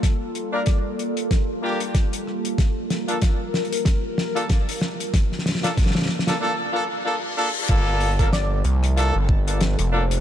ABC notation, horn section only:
X:1
M:4/4
L:1/16
Q:"Swing 16ths" 1/4=94
K:Gm
V:1 name="Horn section"
z3 [B,DFB] z6 [B,DFG] z4 z | z3 [B,DFA] z6 z [B,DFA] z4 | z3 [B,DFA] z3 [B,DFA] [B,DFA] z [B,DFA] z [B,DFA] z [B,DFA] z | [B,DFA]3 [B,DFA] z4 [B,DFA] z2 [B,DFA] z2 [B,DFA] z |]